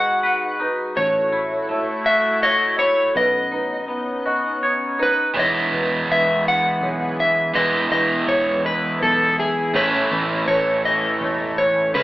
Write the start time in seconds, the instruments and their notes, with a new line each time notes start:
Already playing: fingered electric bass G#1, analog synth pad G#3 D#4 F#4 B4, clean electric guitar G#3 D#4 F#4, felt piano D#5, electric slide guitar F#5
0.23 clean electric guitar B4
0.60 clean electric guitar D#4, felt piano B4
0.96 fingered electric bass A1, clean electric guitar A3, analog synth pad A3 E4, electric slide guitar C#5, felt piano C#5
1.32 clean electric guitar E4
1.69 clean electric guitar A3, felt piano E5
2.05 clean electric guitar F#4, electric slide guitar E5
2.42 clean electric guitar C#5, felt piano C#5, electric slide guitar D#5
2.78 clean electric guitar E4, electric slide guitar C#5
3.15 fingered electric bass B1, clean electric guitar B3, analog synth pad B3 C#4 D#4, felt piano B4, electric slide guitar D#5
3.52 clean electric guitar D#4, felt piano B4
3.88 clean electric guitar B3
4.26 clean electric guitar F#4, felt piano D#5
4.63 clean electric guitar C#5
4.99 clean electric guitar D#4, felt piano B4, electric slide guitar B4
5.34 fingered electric bass E1, clean electric guitar E2, overdriven electric guitar E3 G#3 B3 E4, analog synth pad E3 B3 B4 G#5, felt piano C#5
5.39 electric slide guitar D#5
5.72 fingered electric bass E1, clean electric guitar B2
6.09 fingered electric bass E1, clean electric guitar G#3, felt piano B4, electric slide guitar E5
6.48 electric slide guitar F#5
6.81 fingered electric bass B1, clean electric guitar G#3, felt piano C#5
7.20 electric slide guitar E5
7.53 fingered electric bass E1, clean electric guitar E2, overdriven electric guitar E3 G#3 B3, analog synth pad E4, felt piano B4, electric slide guitar D#5
7.57 overdriven electric guitar E4
7.91 fingered electric bass E1, clean electric guitar B2, felt piano B4, electric slide guitar D#5
8.28 fingered electric bass E1, electric slide guitar C#5
8.64 electric slide guitar B4, felt piano D#5
9.02 fingered electric bass B1, electric slide guitar A4
9.38 electric slide guitar G#4, felt piano E5
9.74 fingered electric bass A1, overdriven electric guitar A2 E3 A3 C#4 E4, clean electric guitar A2, analog synth pad A3 A4 C#5, electric slide guitar B4, felt piano C#5
10.11 fingered electric bass A1, clean electric guitar E3
10.48 fingered electric bass A1, clean electric guitar A3, felt piano B4, electric slide guitar C#5
10.85 clean electric guitar E3, electric slide guitar D#5
11.21 fingered electric bass E1, clean electric guitar A3, felt piano C#5
11.58 clean electric guitar E3, electric slide guitar C#5
11.94 fingered electric bass C#2, analog synth pad C#3 C#4 B4, overdriven electric guitar C#3 G#3 C#4 E4, clean electric guitar C#3, electric slide guitar B4, felt piano B4